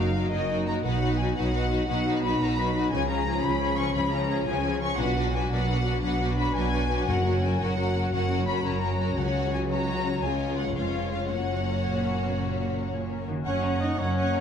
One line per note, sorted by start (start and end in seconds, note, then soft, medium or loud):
0.00 0.26 F#1 medium
0.00 0.26 F#2 soft
0.00 0.86 F#2 soft
0.00 0.14 F#3 soft
0.00 0.29 A#3 soft
0.00 0.14 D#4 soft
0.00 0.29 D#4 soft
0.00 2.94 D#4 soft
0.00 0.13 F#4 soft
0.00 0.67 F#4 soft
0.00 0.14 A#4 soft
0.00 0.15 A#4 soft
0.00 0.31 F5 medium
0.14 0.31 F#3 soft
0.14 0.32 D#4 soft
0.14 0.32 F#4 soft
0.14 0.31 A#4 soft
0.14 0.50 A#4 soft
0.30 0.79 F#1 soft
0.30 0.78 F#2 soft
0.30 0.50 F#3 soft
0.30 0.82 A#3 soft
0.30 0.83 D#4 soft
0.30 0.50 D#4 soft
0.30 0.50 F#4 soft
0.30 0.62 G#4 soft
0.30 0.49 A#4 soft
0.30 0.66 D#5 medium
0.51 0.68 F#3 soft
0.51 0.68 D#4 soft
0.51 0.67 F#4 soft
0.51 0.67 A#4 soft
0.51 0.87 A#4 soft
0.67 0.85 F#3 soft
0.67 0.85 D#4 soft
0.67 1.01 F#4 soft
0.67 0.83 F#4 soft
0.67 0.85 A#4 soft
0.67 0.74 A#5 medium
0.85 1.31 B1 medium
0.85 1.30 B2 soft
0.85 2.93 B2 soft
0.85 1.36 F#3 soft
0.85 1.02 F#3 medium
0.85 1.35 D#4 soft
0.85 1.02 D#4 soft
0.85 1.02 F#4 soft
0.85 1.02 B4 soft
0.85 1.19 F#5 medium
1.03 1.20 F#3 soft
1.03 1.20 D#4 soft
1.03 1.71 F#4 soft
1.03 1.19 F#4 soft
1.03 1.19 B4 soft
1.19 1.37 F#3 soft
1.19 1.37 D#4 soft
1.19 1.36 F#4 soft
1.19 1.36 B4 soft
1.19 1.54 B4 soft
1.19 1.36 G#5 medium
1.36 1.82 B1 medium
1.36 1.83 B2 medium
1.36 1.53 F#3 soft
1.36 1.53 D#4 medium
1.36 1.86 D#4 medium
1.36 1.52 F#4 soft
1.36 1.67 A#4 soft
1.36 1.52 B4 soft
1.36 1.87 F#5 medium
1.40 1.85 F#3 soft
1.53 1.71 F#3 soft
1.53 1.71 D#4 soft
1.53 1.69 F#4 soft
1.53 1.69 B4 soft
1.53 2.23 B4 soft
1.70 1.89 F#3 soft
1.70 1.88 D#4 soft
1.70 1.87 F#4 soft
1.70 2.06 F#4 soft
1.70 1.87 B4 soft
1.86 2.34 B1 medium
1.86 2.34 B2 medium
1.86 2.89 F#3 medium
1.86 2.94 F#3 soft
1.86 2.06 F#3 soft
1.86 2.89 D#4 medium
1.86 2.05 D#4 soft
1.86 2.05 F#4 soft
1.86 2.05 B4 soft
1.86 2.22 F#5 medium
2.06 2.23 F#3 medium
2.06 2.23 D#4 medium
2.06 2.23 F#4 soft
2.06 2.74 F#4 soft
2.06 2.23 B4 soft
2.22 2.40 F#3 soft
2.22 2.40 D#4 soft
2.22 2.41 F#4 soft
2.22 2.57 B4 soft
2.22 2.40 B4 soft
2.22 2.39 B5 medium
2.39 2.86 B1 medium
2.39 2.85 B2 medium
2.39 2.58 F#3 soft
2.39 2.58 D#4 soft
2.39 2.57 F#4 medium
2.39 2.70 A#4 soft
2.39 2.58 B4 soft
2.39 2.58 A#5 medium
2.58 2.74 F#3 soft
2.58 2.74 D#4 soft
2.58 2.75 F#4 soft
2.58 2.94 B4 soft
2.58 2.75 B4 soft
2.58 2.92 B5 medium
2.75 2.92 F#3 soft
2.75 2.92 D#4 soft
2.75 2.93 F#4 soft
2.75 2.93 B4 soft
2.89 3.37 C#2 medium
2.89 3.37 C#3 medium
2.89 5.01 C#3 soft
2.89 4.43 F3 medium
2.89 3.07 F3 medium
2.89 4.46 C#4 medium
2.89 3.07 C#4 soft
2.89 3.08 G#5 medium
2.93 3.09 C#4 medium
2.93 3.10 G#4 medium
3.08 3.24 F3 soft
3.08 3.24 C#4 soft
3.08 3.78 F4 soft
3.08 3.27 G#4 soft
3.08 3.42 A#5 medium
3.12 3.27 C#4 soft
3.25 3.43 F3 soft
3.25 3.43 C#4 soft
3.25 3.60 G#4 soft
3.29 3.45 C#4 soft
3.29 3.45 G#4 soft
3.42 3.89 C#2 medium
3.42 3.89 C#3 medium
3.42 3.60 F3 medium
3.42 3.60 C#4 medium
3.42 3.73 F#4 soft
3.42 3.77 B5 medium
3.47 3.62 C#4 medium
3.47 3.62 G#4 soft
3.61 3.76 F3 soft
3.61 3.77 C#4 soft
3.61 4.29 G#4 soft
3.61 3.77 G#4 soft
3.78 3.95 F3 soft
3.78 3.95 C#4 medium
3.78 3.95 C#4 soft
3.78 4.12 F4 soft
3.78 3.94 G#4 soft
3.78 3.95 C#6 medium
3.95 4.41 C#2 medium
3.95 4.41 C#3 medium
3.95 4.12 F3 soft
3.95 5.01 G#3 soft
3.95 4.12 C#4 medium
3.95 4.12 C#4 soft
3.95 4.12 G#4 soft
3.95 4.12 B5 medium
4.12 4.29 F3 medium
4.12 4.28 C#4 soft
4.12 4.80 F4 soft
4.12 4.28 G#4 soft
4.12 4.47 A#5 medium
4.29 4.46 F3 soft
4.29 4.46 C#4 soft
4.29 4.47 C#4 soft
4.29 4.47 G#4 soft
4.29 4.63 G#4 soft
4.47 4.93 C#2 medium
4.47 4.92 C#3 medium
4.47 4.63 F3 soft
4.47 4.82 F3 medium
4.47 4.63 C#4 soft
4.47 4.82 C#4 medium
4.47 4.65 C#4 soft
4.47 4.76 F#4 soft
4.47 4.64 G#4 soft
4.47 4.81 G#5 medium
4.64 4.79 F3 soft
4.64 4.80 C#4 soft
4.64 4.81 C#4 soft
4.64 5.00 G#4 medium
4.64 4.81 G#4 soft
4.80 4.98 F3 soft
4.80 4.98 C#4 soft
4.80 4.99 C#4 soft
4.80 5.00 F4 soft
4.80 4.99 G#4 soft
4.80 4.99 C#6 medium
4.97 5.45 B1 medium
4.97 5.45 B2 medium
4.97 7.09 B2 soft
4.97 5.15 F#3 medium
4.97 9.13 F#3 medium
4.97 7.03 D4 medium
4.97 5.15 D4 medium
4.97 5.16 F#4 soft
4.97 5.16 B4 medium
4.97 5.33 F#5 medium
5.16 5.33 F#3 soft
5.16 5.33 D4 soft
5.16 5.84 F#4 soft
5.16 5.34 F#4 soft
5.16 5.33 B4 soft
5.33 5.49 F#3 soft
5.33 5.49 D4 soft
5.33 5.51 F#4 soft
5.33 5.67 B4 soft
5.33 5.51 B4 soft
5.33 5.51 G#5 medium
5.50 5.97 B1 medium
5.50 5.97 B2 medium
5.50 5.67 F#3 medium
5.50 5.67 D4 medium
5.50 5.68 F#4 soft
5.50 5.81 A#4 soft
5.50 5.68 B4 soft
5.50 6.02 F#5 medium
5.68 5.82 F#3 soft
5.68 5.83 D4 soft
5.68 5.83 F#4 soft
5.68 6.36 B4 soft
5.68 5.83 B4 soft
5.84 6.02 F#3 soft
5.84 6.02 D4 soft
5.84 6.02 F#4 soft
5.84 6.20 F#4 soft
5.84 6.02 B4 soft
6.02 6.49 B1 medium
6.02 6.49 B2 medium
6.02 9.19 F#3 soft
6.02 6.18 F#3 soft
6.02 6.19 D4 soft
6.02 6.20 F#4 soft
6.02 6.20 B4 soft
6.02 6.37 F#5 medium
6.20 6.36 F#3 soft
6.20 6.36 D4 soft
6.20 6.90 F#4 soft
6.20 6.37 F#4 soft
6.20 6.37 B4 soft
6.37 6.55 F#3 soft
6.37 6.55 D4 soft
6.37 6.54 F#4 soft
6.37 6.72 B4 soft
6.37 6.54 B4 soft
6.37 6.55 B5 medium
6.54 7.01 B1 medium
6.54 7.02 B2 medium
6.54 6.72 F#3 soft
6.54 6.73 D4 soft
6.54 6.72 F#4 soft
6.54 6.85 A#4 soft
6.54 6.72 B4 soft
6.54 7.07 G#5 medium
6.73 6.90 F#3 soft
6.73 6.91 D4 soft
6.73 6.89 F#4 soft
6.73 6.88 B4 soft
6.73 7.10 B4 soft
6.89 7.08 F#3 soft
6.89 7.09 D4 soft
6.89 7.07 F#4 soft
6.89 7.25 F#4 soft
6.89 7.07 B4 soft
7.08 7.54 F#1 medium
7.08 7.57 F#2 medium
7.08 7.54 F#2 soft
7.08 9.19 F#2 soft
7.08 7.25 F#3 medium
7.08 7.25 C#4 medium
7.08 11.26 C#4 medium
7.08 7.23 F#4 soft
7.08 7.23 A#4 soft
7.08 7.43 F#5 medium
7.24 7.43 F#3 soft
7.24 7.44 C#4 soft
7.24 7.41 F#4 soft
7.24 7.94 F#4 soft
7.24 7.41 A#4 soft
7.42 7.60 F#3 soft
7.42 7.60 C#4 soft
7.42 7.60 F#4 soft
7.42 7.59 A#4 soft
7.42 7.77 A#4 soft
7.42 7.60 G#5 medium
7.60 8.06 F#1 medium
7.60 8.06 F#2 medium
7.60 7.78 F#3 soft
7.60 7.78 C#4 soft
7.60 7.78 F#4 soft
7.60 7.91 G#4 soft
7.60 7.77 A#4 soft
7.60 8.11 F#5 medium
7.78 7.96 F#3 soft
7.78 7.96 C#4 soft
7.78 7.93 F#4 soft
7.78 8.46 A#4 soft
7.78 7.93 A#4 soft
7.94 8.13 F#3 soft
7.94 8.13 C#4 soft
7.94 8.12 F#4 soft
7.94 8.29 F#4 soft
7.94 8.11 A#4 soft
8.12 8.59 F#1 medium
8.12 8.59 F#2 medium
8.12 9.16 C#3 soft
8.12 8.30 F#3 soft
8.12 8.30 C#4 soft
8.12 8.29 F#4 soft
8.12 8.29 A#4 soft
8.12 8.46 F#5 medium
8.30 8.48 F#3 soft
8.30 8.48 C#4 soft
8.30 8.46 F#4 soft
8.30 8.99 F#4 soft
8.30 8.47 A#4 soft
8.47 8.65 F#3 soft
8.47 8.65 C#4 soft
8.47 8.62 F#4 soft
8.47 8.81 A#4 soft
8.47 8.62 A#4 soft
8.47 8.64 B5 medium
8.63 9.11 F#1 soft
8.63 9.12 F#2 medium
8.63 8.80 F#4 soft
8.63 8.95 G#4 soft
8.63 8.81 A#4 soft
8.63 9.18 A#5 medium
8.67 8.83 F#3 soft
8.67 8.83 C#4 soft
8.81 9.00 F#3 soft
8.81 9.00 C#4 soft
8.81 8.98 F#4 soft
8.81 10.24 A#4 soft
8.81 8.99 A#4 soft
9.00 9.17 F#3 soft
9.00 9.17 C#4 soft
9.00 9.15 F#4 soft
9.00 9.34 F#4 soft
9.00 9.17 A#4 soft
9.16 10.18 C#2 medium
9.16 10.19 C#2 soft
9.16 10.21 C#3 soft
9.16 9.67 F#3 soft
9.16 10.19 F#3 medium
9.16 9.67 C#4 soft
9.16 9.66 F#4 soft
9.16 9.66 C#5 soft
9.16 9.53 F#5 medium
9.35 10.03 F#4 soft
9.53 9.87 C#5 soft
9.53 9.60 G#5 soft
9.70 10.22 F#3 soft
9.70 10.22 C#4 soft
9.70 10.21 F#4 soft
9.70 10.00 B4 soft
9.70 10.21 C#5 soft
9.70 10.22 A#5 medium
9.88 10.56 C#5 soft
10.05 10.24 F#4 soft
10.22 10.75 C#2 soft
10.22 11.31 C#3 soft
10.22 11.27 F3 soft
10.22 10.77 G#3 soft
10.22 10.75 C#4 soft
10.22 10.74 F4 soft
10.22 10.74 C#5 soft
10.22 10.58 G#5 medium
10.39 11.10 F4 soft
10.57 10.93 C#5 soft
10.57 10.75 F#5 medium
10.75 11.30 F1 soft
10.75 11.30 F2 soft
10.75 11.30 G#3 soft
10.75 11.29 C#4 soft
10.75 11.29 F4 soft
10.75 11.06 B4 soft
10.75 11.29 C#5 soft
10.75 11.11 F5 soft
10.94 14.40 C#5 soft
11.12 11.31 F4 soft
11.12 11.30 F5 soft
11.29 13.28 F#1 soft
11.29 11.80 F#2 soft
11.29 13.27 F#2 soft
11.29 13.24 A#3 soft
11.29 13.28 A#3 soft
11.29 13.24 C#4 soft
11.29 13.28 F#4 soft
11.29 13.24 C#5 soft
11.29 12.89 F#5 medium
11.48 12.19 F#4 soft
11.66 12.01 A#4 soft
11.84 12.18 A#2 soft
11.84 12.15 G#4 soft
12.02 12.72 A#4 soft
12.20 12.38 B2 soft
12.20 12.54 F#4 soft
12.38 12.91 A#2 soft
12.38 13.47 C#3 soft
12.56 13.27 F#4 soft
12.74 13.08 A#4 soft
12.92 13.27 A#2 soft
12.92 13.22 G#4 soft
13.09 13.41 A#4 soft
13.28 14.40 F#2 soft
13.28 13.35 D#3 soft
13.28 13.36 F#4 soft
13.33 14.40 C#4 soft
13.37 14.40 F#4 soft
13.42 13.95 A#3 soft
13.42 13.95 C#4 soft
13.42 14.40 A#4 soft
13.42 13.62 C#5 soft
13.42 13.82 C#5 medium
13.42 13.62 F#5 soft
13.42 13.62 C#6 soft
13.46 13.92 F#1 medium
13.46 13.92 F#2 soft
13.46 13.79 C#4 medium
13.46 13.79 C#5 soft
13.46 13.95 F#5 soft
13.63 13.81 C#5 soft
13.63 13.81 F#5 soft
13.63 13.81 A#5 soft
13.81 13.99 D#4 medium
13.81 13.97 C#5 soft
13.81 14.01 D#5 soft
13.81 13.99 D#5 soft
13.81 13.98 F#5 soft
13.81 13.98 C#6 soft
13.98 14.40 F#1 medium
13.98 14.40 F#2 soft
13.98 14.40 A#3 soft
13.98 14.40 C#4 soft
13.98 14.40 C#4 medium
13.98 14.40 C#5 soft
13.98 14.16 C#5 soft
13.98 14.40 C#5 medium
13.98 14.16 F#5 soft
13.98 14.40 F#5 soft
13.98 14.17 A#5 soft
14.18 14.33 C#5 soft
14.18 14.33 F#5 soft
14.18 14.34 C#6 soft
14.34 14.40 C#5 soft
14.34 14.40 F#5 soft
14.34 14.40 A#5 soft